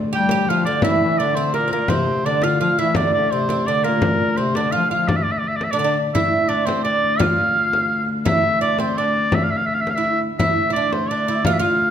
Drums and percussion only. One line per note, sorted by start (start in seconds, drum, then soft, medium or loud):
0.29 frame drum medium
0.47 frame drum soft
0.65 frame drum soft
0.82 frame drum medium
1.53 frame drum soft
1.72 frame drum soft
1.88 frame drum medium
2.06 frame drum soft
2.42 frame drum medium
2.60 frame drum soft
2.78 frame drum soft
2.95 frame drum medium
3.13 frame drum soft
3.49 frame drum medium
3.66 frame drum soft
3.84 frame drum soft
4.02 frame drum medium
4.20 frame drum soft
4.55 frame drum medium
4.72 frame drum soft
4.90 frame drum soft
5.08 frame drum medium
5.44 frame drum soft
5.61 frame drum medium
6.15 frame drum medium
6.51 frame drum soft
6.69 frame drum medium
7.04 frame drum soft
7.20 frame drum medium
7.56 frame drum soft
7.73 frame drum medium
8.09 frame drum soft
8.26 frame drum medium
8.62 frame drum soft
8.79 frame drum medium
9.15 frame drum soft
9.32 frame drum medium
9.68 frame drum soft
9.87 frame drum medium
10.04 frame drum soft
10.39 frame drum medium
10.74 frame drum soft
10.93 frame drum medium
11.28 frame drum soft
11.45 frame drum medium
11.81 frame drum soft